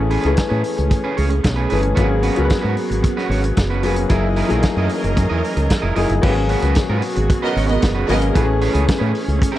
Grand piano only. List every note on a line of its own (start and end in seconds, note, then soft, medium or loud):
0.00 0.13 E3 medium
0.00 0.13 A3 medium
0.00 0.14 B3 medium
0.00 0.14 C#4 medium
0.00 0.14 G#4 medium
0.25 1.01 E3 medium
0.25 1.01 A3 medium
0.25 1.01 B3 medium
0.25 1.01 C#4 medium
0.25 1.01 G#4 medium
1.71 1.90 E3 medium
1.71 1.91 A3 medium
1.71 1.91 B3 medium
1.71 1.91 C#4 medium
1.71 1.91 G#4 medium
1.99 2.27 F#3 medium
1.99 2.27 A#3 medium
1.99 2.27 B3 medium
1.99 2.27 C#4 medium
1.99 2.27 G#4 loud
2.37 3.13 F#3 medium
2.37 3.13 B3 medium
2.37 3.14 C#4 medium
2.37 2.45 A#4 medium
2.45 3.17 B4 medium
3.83 4.03 F#3 medium
3.83 4.03 A#3 medium
3.83 4.03 B3 medium
3.83 4.03 C#4 medium
3.83 4.04 G#4 medium
4.09 4.39 F#3 medium
4.09 4.39 A#3 medium
4.09 4.39 D#4 medium
4.09 4.39 E4 medium
4.09 4.39 G#4 loud
4.48 5.25 F#3 medium
4.48 4.56 A3 medium
4.48 5.26 D#4 medium
4.48 5.26 E4 medium
4.48 5.26 G#4 medium
4.55 5.29 A#3 medium
5.96 6.15 F#3 medium
5.96 6.16 A#3 medium
5.96 6.15 D#4 medium
5.96 6.16 E4 medium
5.96 6.16 G#4 medium
6.22 6.98 F#3 medium
6.22 6.98 A#3 medium
6.22 6.98 B3 medium
6.22 6.99 C#4 medium
6.22 6.30 G4 medium
6.30 7.02 G#4 loud
8.09 8.28 F#3 medium
8.09 8.28 A#3 medium
8.09 8.28 B3 medium
8.09 8.28 C#4 medium
8.09 8.28 G#4 medium
8.36 9.11 E3 medium
8.36 9.11 A3 medium
8.36 9.11 B3 medium
8.36 9.12 C#4 medium
8.36 8.43 F#4 medium
8.43 9.15 G#4 loud